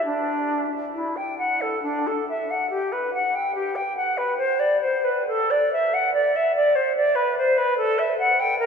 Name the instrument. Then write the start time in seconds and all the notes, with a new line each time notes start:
flute
0.05 D4
0.94 E4
1.16 G5
1.38 F#5
1.61 A4
1.82 D4
2.07 A4
2.29 E5
2.50 F#5
2.70 G4
2.92 B4
3.14 F#5
3.35 G5
3.55 G4
3.76 G5
3.97 F#5
4.17 B4
4.38 C5
4.59 D5
4.81 C5
5.04 B4
5.28 A4
5.50 D5
5.73 E5
5.94 F#5
6.14 D5
6.36 E5
6.56 D5
6.75 C5
6.97 D5
7.15 B4
7.37 C5
7.57 B4
7.77 A4
7.99 E5
8.19 F#5
8.40 G5
8.59 A#4